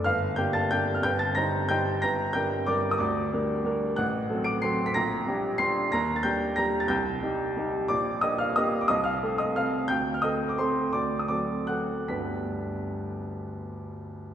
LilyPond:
\new Staff \with { instrumentName = "Upright piano" } { \time 3/4 \key g \minor \tempo 4 = 180 << { <f'' f'''>4 <g'' g'''>8 <a'' a'''>8 <g'' g'''>8. f'''16 | <g'' g'''>8 <a'' a'''>8 <bes'' bes'''>4 <g'' g'''>4 | <bes'' bes'''>4 <g'' g'''>4 <d'' d'''>8. ees'''16 | <d'' d'''>2~ <d'' d'''>8 r8 |
<fis'' fis'''>4. <d''' d''''>8 <c''' c''''>8. b'''16 | <bes'' bes'''>2 <c''' c''''>4 | <bes'' bes'''>8. a'''16 <g'' g'''>4 <bes'' bes'''>8. a'''16 | <g'' g'''>2~ <g'' g'''>8 r8 |
<d'' d'''>4 <ees'' ees'''>8 <f'' f'''>8 <ees'' ees'''>8. d'''16 | <ees'' ees'''>8 <f'' f'''>4 <ees'' ees'''>8 <f'' f'''>4 | <g'' g'''>8. f'''16 <ees'' ees'''>8. d'''16 <c'' c'''>4 | <d'' d'''>8. ees'''16 <d'' d'''>4 <fis'' fis'''>4 |
<g,, d, g b d' g' b'''>2.~ | <g,, d, g b d' g' b'''>2. | } \\ { g,,4 <bes d' g'>4 <bes d' g'>4 | g,,4 <g ees' c''>4 <g ees' c''>4 | g,,4 <g d' bes'>4 <g d' bes'>4 | d,4 <g d' bes'>4 <g d' bes'>4 |
a,,4 <fis c' a'>4 <fis c' a'>4 | bes,,4 <g d' g'>4 <g d' g'>4 | ees,4 <g d' g'>4 <g d' g'>4 | c,4 <g ees' g'>4 <g ees' g'>4 |
bes,,4 <bes d' g'>4 <bes d' g'>4 | c,4 <a c' a'>4 <a c' a'>4 | d,4 <a c' a'>4 <a c' a'>4 | d,4 <fis c' a'>4 <fis c' a'>4 |
r2. | r2. | } >> }